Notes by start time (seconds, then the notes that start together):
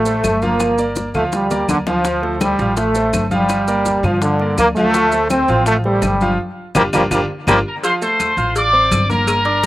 Already playing: A1 A3
0.05 A3 A4 C5, high bongo, high conga, maracas
0.24 G1, high bongo, low bongo, high conga, claves, maracas
0.42 F3 A#3 F4 F5, high conga, maracas
0.60 high bongo, high conga, claves, maracas
0.78 A#3 A#4 D5, high bongo, high conga, maracas
0.96 high bongo, high conga, maracas
1.14 D2 F3 A3 F4 F5, high bongo, high conga, low conga, claves, maracas
1.32 G3, high bongo, high conga, maracas
1.51 A#3 A#4 D5, low bongo, high conga, maracas
1.68 D2 D3, low bongo, high conga, claves, maracas
1.87 F3 F4 F5, low bongo, high conga, maracas
2.05 F3 F4 F5, high bongo, high conga, maracas
2.22 A3 A4 C5, high bongo, high conga
2.41 G3, high bongo, high conga, claves, maracas
2.59 A1 F3 F4 F5, high bongo, high conga, maracas
2.77 A3, high bongo, high conga, maracas
2.95 A3 A4 C5, high bongo, high conga, maracas
3.13 G1, high bongo, low bongo, high conga, claves, maracas
3.31 F3 G3 F4 F5, high conga, maracas
3.49 high bongo, high conga, claves, maracas
3.68 A#3 A#4 D5, high bongo, high conga, maracas
3.85 high bongo, high conga, maracas
4.03 G2 F3 F4 F5, high bongo, high conga, low conga, claves, maracas
4.22 D3, high bongo, high conga, maracas
4.39 A#3 A#4 D5, high bongo, high conga
4.58 D2 A#3, high bongo, low bongo, high conga, claves, maracas
4.76 F3 A3 F4 F5, high conga, maracas
4.94 F3 F4 F5, high bongo, high conga, maracas
5.12 A3 A4 C5, high bongo, high conga, maracas
5.30 C4, high bongo, high conga, claves, maracas
5.48 A1 F3 F4 F5, high bongo, high conga, maracas
5.66 A3, high bongo, high conga, maracas
5.84 G3 A3 A4 C5, high bongo, high conga
6.02 G1, high bongo, low bongo, high conga, claves, maracas
6.21 F3 F4 F5, high conga, maracas
6.75 G1 F3 G3 A#3 D4 F4 G4, low bongo, low conga, claves, maracas
6.93 G1 F3 G3 A#3 D4 F4 G4, low bongo, low conga, claves, maracas
7.11 G1 F3 G3 A#3 D4 F4 G4, low bongo, low conga, claves, maracas
7.47 G1 F3 G3 A#3 D4 F4 G4, low bongo, low conga, claves, maracas
7.66 A#4 A#5
7.83 F3 F4 C5 F5 C6, cowbell, high conga, maracas
8.02 A3 A4 C5 A5 C6, high conga, maracas
8.20 cowbell, high conga, claves, maracas
8.37 A1 F4 F5 F6, high conga, maracas
8.56 D5 D6, cowbell, high conga, maracas
8.73 C4 C5 C6, high conga
8.91 G1, cowbell, high conga, claves, maracas
9.09 A#3 A#4 A#5, high conga, maracas
9.27 cowbell, high conga, claves, maracas
9.45 D4 D5 D6, cowbell, high conga